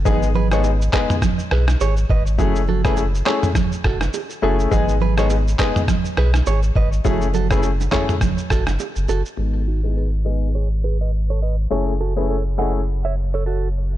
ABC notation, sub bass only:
X:1
M:4/4
L:1/16
Q:"Swing 16ths" 1/4=103
K:G#phr
V:1 name="Sub bass" clef=bass
G,,,6 z4 B,,,2 G,,,2 G,,,2 | F,,,6 z4 F,,,2 z2 F,,,2 | G,,,6 z4 B,,,2 G,,,2 G,,,2 | F,,,6 z2 F,,, z A,,, F,,, z F,,, F,,, z |
G,,,16 | F,,,16 |]